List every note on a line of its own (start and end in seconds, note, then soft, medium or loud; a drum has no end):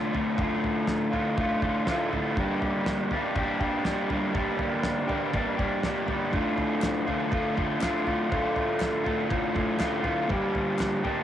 0.00 0.36 D2 medium
0.00 0.38 A2 medium
0.00 0.17 D3 medium
0.00 0.15 A3 medium
0.00 0.12 F4 loud
0.14 0.40 A3 medium
0.14 0.40 F4 medium
0.14 floor tom medium
0.18 0.39 D3 medium
0.37 1.37 D2 medium
0.37 1.36 A2 medium
0.37 1.14 D3 medium
0.37 1.12 A3 medium
0.37 kick loud
0.37 floor tom medium
0.42 1.10 F4 medium
0.64 floor tom medium
0.88 snare medium
0.88 floor tom medium
1.11 1.39 A3 medium
1.11 1.40 F4 medium
1.11 floor tom medium
1.15 1.38 D3 medium
1.37 1.86 A2 medium
1.37 1.64 D3 medium
1.37 1.63 A3 medium
1.37 1.61 F4 medium
1.37 kick loud
1.37 floor tom medium
1.62 1.87 D3 medium
1.62 1.88 A3 medium
1.62 1.89 F4 medium
1.62 kick medium
1.62 floor tom medium
1.86 2.35 D2 medium
1.86 2.35 A2 loud
1.86 2.14 D3 medium
1.86 2.11 A3 loud
1.86 2.09 F4 loud
1.86 snare medium
1.86 floor tom medium
2.10 2.36 A3 medium
2.10 2.34 F4 medium
2.10 floor tom medium
2.15 2.36 D3 medium
2.36 3.83 G2 medium
2.36 3.36 D3 medium
2.36 3.15 G3 medium
2.36 3.14 A#3 medium
2.36 3.12 D4 medium
2.36 3.11 G4 medium
2.36 kick loud
2.36 floor tom medium
2.62 floor tom medium
2.86 snare loud
2.86 floor tom medium
3.11 3.35 A#3 medium
3.11 3.38 D4 medium
3.11 3.38 G4 medium
3.11 floor tom medium
3.15 3.34 G3 medium
3.35 3.62 G3 medium
3.35 3.61 A#3 medium
3.35 3.61 D4 medium
3.35 3.59 G4 medium
3.35 kick loud
3.35 floor tom medium
3.60 3.84 G3 soft
3.60 3.85 A#3 medium
3.60 3.86 D4 medium
3.60 3.86 G4 medium
3.60 kick medium
3.60 floor tom medium
3.84 4.33 G2 medium
3.84 4.33 D3 medium
3.84 4.11 G3 loud
3.84 4.10 A#3 loud
3.84 4.10 D4 medium
3.84 4.08 G4 loud
3.84 snare loud
3.84 floor tom medium
4.09 4.34 G3 medium
4.09 4.35 A#3 medium
4.09 4.36 D4 medium
4.09 4.37 G4 medium
4.09 floor tom medium
4.34 5.34 G2 medium
4.34 5.34 D3 medium
4.34 5.11 G3 loud
4.34 5.09 A#3 medium
4.34 5.09 D4 medium
4.34 5.07 G4 medium
4.34 kick loud
4.34 floor tom medium
4.59 floor tom medium
4.83 snare loud
4.83 floor tom medium
5.08 5.32 A#3 medium
5.08 5.34 D4 medium
5.08 5.34 G4 medium
5.08 floor tom medium
5.12 5.31 G3 medium
5.33 5.60 G3 medium
5.33 5.58 A#3 medium
5.33 5.58 D4 medium
5.33 5.56 G4 medium
5.33 kick loud
5.33 floor tom medium
5.57 5.84 A#3 medium
5.57 5.86 D4 medium
5.57 5.85 G4 medium
5.57 kick medium
5.57 floor tom medium
5.61 5.83 G3 medium
5.83 6.32 G2 medium
5.83 6.32 D3 medium
5.83 6.10 G3 loud
5.83 6.10 A#3 medium
5.83 6.09 D4 medium
5.83 6.07 G4 loud
5.83 snare loud
5.83 floor tom medium
6.08 6.34 G3 medium
6.08 6.33 A#3 medium
6.08 9.60 D4 medium
6.08 6.32 G4 medium
6.08 floor tom medium
6.33 7.79 D2 medium
6.33 7.30 A2 medium
6.33 7.10 D3 medium
6.33 7.08 A3 medium
6.33 7.06 F4 medium
6.33 kick loud
6.33 floor tom medium
6.58 floor tom medium
6.82 snare loud
6.82 clap medium
6.82 floor tom medium
7.07 7.32 D3 medium
7.07 7.32 A3 medium
7.07 7.33 F4 medium
7.07 floor tom medium
7.31 7.80 A2 medium
7.31 7.58 D3 medium
7.31 7.57 A3 medium
7.31 7.54 F4 medium
7.31 kick loud
7.31 floor tom medium
7.55 7.80 D3 medium
7.55 7.82 A3 medium
7.55 7.82 F4 medium
7.55 kick medium
7.55 floor tom medium
7.80 8.28 D2 loud
7.80 8.29 A2 medium
7.80 8.07 D3 loud
7.80 8.05 A3 medium
7.80 8.03 F4 loud
7.80 snare loud
7.80 clap medium
7.80 floor tom medium
8.05 8.30 D3 medium
8.05 8.31 A3 medium
8.05 8.32 F4 medium
8.05 floor tom medium
8.30 9.30 D2 medium
8.30 9.27 A2 medium
8.30 9.06 D3 medium
8.30 9.04 A3 medium
8.30 9.03 F4 loud
8.30 kick medium
8.30 floor tom medium
8.56 floor tom medium
8.80 snare medium
8.80 clap medium
8.80 floor tom medium
9.04 9.28 D3 medium
9.04 9.29 A3 medium
9.04 9.31 F4 medium
9.04 floor tom medium
9.28 9.77 A2 medium
9.28 9.57 D3 medium
9.28 9.54 A3 medium
9.28 kick loud
9.28 floor tom medium
9.32 9.53 F4 medium
9.54 9.79 A3 medium
9.54 9.80 F4 medium
9.54 kick medium
9.54 floor tom medium
9.58 9.78 D3 medium
9.78 10.27 D2 medium
9.78 10.28 A2 loud
9.78 10.05 D3 loud
9.78 10.04 A3 loud
9.78 10.02 F4 loud
9.78 snare loud
9.78 clap medium
9.78 floor tom medium
10.03 10.28 D3 medium
10.03 10.29 A3 medium
10.03 10.28 F4 medium
10.03 floor tom medium
10.28 11.23 G2 medium
10.28 11.23 D3 medium
10.28 11.06 G3 medium
10.28 11.05 A#3 medium
10.28 11.04 D4 medium
10.28 11.03 G4 medium
10.28 kick loud
10.28 floor tom medium
10.55 floor tom medium
10.79 snare loud
10.79 clap medium
10.79 floor tom medium
11.04 11.23 G3 medium
11.04 11.23 A#3 medium
11.04 11.23 D4 medium
11.04 11.23 G4 medium
11.04 floor tom medium